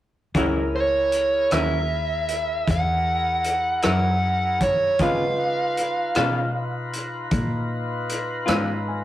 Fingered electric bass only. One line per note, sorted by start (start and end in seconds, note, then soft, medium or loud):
0.35 1.47 C#2 medium
1.52 2.64 D#2 medium
2.68 3.80 E2 medium
3.85 4.97 F#2 medium
5.00 6.12 C#3 medium
6.16 7.29 B2 medium
7.32 8.45 A#2 medium
8.48 9.04 G#2 medium